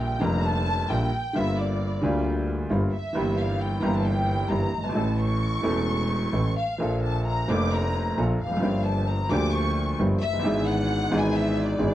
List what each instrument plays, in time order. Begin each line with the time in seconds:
Already playing: double bass A#1, upright piano A#1 A#2 D3 G3 A#3 F4
0.00 violin section G5
0.19 upright piano F1 F2 D3 G3 A#3 F4, double bass F1, violin section A#5
0.44 violin section A5
0.89 upright piano A#1 A#2 D3 G3 A#3 F4, double bass A#1, violin section G5
1.33 upright piano G1 G2 D3 G3 A#3, double bass G1, violin section E5
1.37 upright piano F4
1.58 violin section D5
2.01 double bass D2, upright piano D2 D3 G3 A#3 F4
2.70 upright piano G1 G2 D3 G3 A#3 F4, double bass G1
2.93 violin section E5
3.13 double bass G1, upright piano G1 G2 E3 G3 A#3
3.17 upright piano G4
3.38 violin section F5
3.61 violin section G5
3.80 upright piano G1 G2 E3 G3 A#3, double bass G1, violin section A#5
3.84 upright piano G4
3.94 violin section A5
4.04 violin section G5
4.50 double bass G1, upright piano G1 G2 E3 G3 A#3 G4, violin section A#5
4.72 double bass G1
4.78 upright piano F#1
4.84 upright piano G1, violin section A5
4.89 upright piano G#1 E3
4.94 upright piano A1 A2 A3 C#4 A4, double bass A1
5.18 violin section C#6
5.62 double bass E1, upright piano E1 E2 E3 A3 C#4
5.66 upright piano A4
6.32 double bass A1, upright piano A1 A2 E3 A3 C#4 A4
6.57 violin section F5
6.78 double bass A#1, upright piano A#1 A#2 F3 A#3 D4 A4
7.03 violin section A5
7.26 violin section A#5
7.48 double bass F1, upright piano F1 F2 F3 A3 A#3 D4, violin section D6
7.72 violin section A#5
8.17 double bass A#1, upright piano A#1 A#2 F3 A#3 D4 A4
8.40 double bass F1, violin section F5
8.47 upright piano E2
8.52 upright piano F2
8.57 upright piano F#2 F3
8.62 upright piano G1 G2 A#3 D4 G4, double bass G1
8.86 violin section A5
9.09 violin section A#5
9.29 upright piano D2 D3 F3 A#3 D4 G4, double bass D2, violin section D6
9.53 violin section C#6
9.99 double bass G1, upright piano G1 G2 F3 A#3 D4 G4
10.21 double bass F#1, violin section E5
10.28 upright piano F1
10.33 upright piano F#1
10.39 upright piano G1 E3
10.44 upright piano G#1 G#2 B3 D4 G#4, double bass G#1
10.66 violin section F#5
11.10 double bass G#1, upright piano G#1 G#2 E3 B3 D4
11.14 upright piano G#4
11.19 violin section G#5
11.34 violin section E5
11.64 violin section D5
11.79 upright piano G#1 G#2 E3 B3 D4 G#4, double bass G#1